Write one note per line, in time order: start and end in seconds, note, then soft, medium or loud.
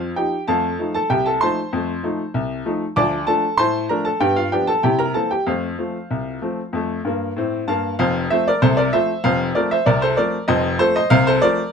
0.00 0.11 F2 medium
0.00 0.14 F4 medium
0.00 0.14 C5 medium
0.16 0.34 F3 soft
0.16 0.34 D#4 medium
0.16 0.46 G4 medium
0.16 0.41 G5 medium
0.47 0.74 F2 medium
0.47 0.66 A3 soft
0.47 0.92 A4 medium
0.47 0.92 F5 medium
0.47 0.92 A5 medium
0.79 0.96 F3 soft
0.79 0.96 A3 soft
0.79 0.97 D#4 soft
0.94 1.09 A4 medium
0.94 1.10 A5 medium
1.10 1.36 C2 medium
1.10 1.25 G4 medium
1.10 1.25 G5 medium
1.26 1.41 A4 medium
1.26 1.41 A5 medium
1.41 1.59 F3 soft
1.41 1.59 A3 soft
1.41 1.59 D#4 soft
1.41 2.93 C5 medium
1.41 2.93 A5 medium
1.41 2.65 C6 medium
1.73 1.99 F2 medium
1.73 1.91 A3 soft
2.03 2.20 F3 soft
2.03 2.21 A3 soft
2.03 2.21 D#4 soft
2.34 2.61 C2 medium
2.65 2.83 F3 soft
2.65 2.83 A3 medium
2.65 2.83 D#4 medium
2.96 3.23 D2 medium
2.96 3.15 F3 medium
2.96 3.26 D5 medium
2.96 3.25 A5 medium
2.96 3.21 D6 medium
3.27 3.44 F3 medium
3.27 3.45 A3 soft
3.27 3.45 D4 medium
3.27 3.57 A4 medium
3.27 3.57 A5 medium
3.57 3.85 A2 medium
3.57 3.88 C5 medium
3.57 3.88 A5 medium
3.57 3.83 C6 loud
3.89 4.07 F3 soft
3.89 4.07 A3 soft
3.89 4.08 D4 medium
3.89 4.05 A#4 medium
3.89 4.05 A#5 medium
4.05 4.20 A4 medium
4.05 4.21 A5 medium
4.20 4.47 G2 medium
4.20 4.40 B3 medium
4.20 4.36 G4 medium
4.20 4.36 G5 medium
4.36 4.52 F4 medium
4.36 4.52 F5 medium
4.52 4.69 F3 medium
4.52 4.70 B3 soft
4.52 4.70 D4 soft
4.52 4.67 G4 medium
4.52 4.68 G5 medium
4.67 4.83 A4 medium
4.67 4.83 A5 medium
4.83 5.10 C3 medium
4.83 5.02 E4 medium
4.83 4.99 G4 medium
4.83 4.99 G5 medium
4.99 5.14 A#4 medium
4.99 5.15 A#5 medium
5.14 5.32 E3 soft
5.14 5.32 A#3 soft
5.14 5.32 C4 soft
5.14 5.30 A4 medium
5.14 5.30 A5 medium
5.31 5.46 G4 medium
5.31 5.47 G5 medium
5.46 5.73 F2 medium
5.46 5.66 A3 soft
5.46 7.64 F4 soft
5.46 7.64 C5 soft
5.46 7.63 F5 medium
5.78 5.96 F3 soft
5.78 5.96 A3 soft
5.78 5.96 C4 soft
6.11 6.37 C2 medium
6.42 6.59 F3 soft
6.42 6.59 A3 soft
6.42 6.60 C4 soft
6.73 6.98 F2 medium
6.73 6.99 A3 medium
7.05 7.30 G2 medium
7.05 7.31 A#3 medium
7.36 7.61 A2 medium
7.36 7.62 C4 medium
7.68 7.93 G2 medium
7.68 7.94 A#3 medium
7.68 7.97 F5 medium
7.68 7.93 A5 medium
7.99 8.26 F1 medium
7.99 8.26 F2 medium
7.99 8.29 C5 medium
7.99 8.24 F5 medium
8.30 8.48 F3 medium
8.30 8.48 A3 medium
8.30 8.49 C4 medium
8.30 8.46 C5 medium
8.30 8.46 E5 medium
8.48 8.62 A#4 medium
8.48 8.62 D5 medium
8.62 8.89 C2 medium
8.62 8.89 C3 medium
8.62 8.77 A4 medium
8.62 8.77 C5 medium
8.77 8.92 A#4 medium
8.77 8.93 D5 medium
8.93 9.10 F3 medium
8.93 9.11 A3 medium
8.93 9.11 C4 medium
8.93 9.23 C5 medium
8.93 9.23 E5 medium
9.24 9.51 F1 medium
9.24 9.51 F2 medium
9.24 9.54 C5 medium
9.24 9.49 F5 loud
9.55 9.73 F3 medium
9.55 9.73 A3 medium
9.55 9.73 C4 medium
9.55 9.70 A#4 medium
9.55 9.71 D5 medium
9.71 9.86 C5 medium
9.71 9.87 E5 medium
9.86 10.13 C2 medium
9.86 10.13 C3 medium
9.86 10.01 A#4 medium
9.86 10.02 D5 medium
10.02 10.18 A4 medium
10.02 10.18 C5 medium
10.17 10.35 F3 medium
10.17 10.35 A3 medium
10.17 10.35 C4 medium
10.17 10.47 A#4 medium
10.17 10.42 D5 medium
10.48 10.75 F1 medium
10.48 10.75 F2 loud
10.48 10.78 C5 medium
10.48 10.78 D#5 loud
10.79 10.97 F3 medium
10.79 10.97 A3 medium
10.79 10.97 C4 medium
10.79 10.95 A4 medium
10.79 10.95 C5 loud
10.96 11.10 C5 medium
10.96 11.11 D#5 loud
11.10 11.37 C2 loud
11.10 11.38 C3 loud
11.10 11.26 C5 medium
11.10 11.26 F5 loud
11.27 11.42 A4 medium
11.27 11.43 C5 loud
11.42 11.59 F3 medium
11.42 11.60 A3 medium
11.42 11.60 C4 medium
11.42 11.72 A#4 medium
11.42 11.67 D5 loud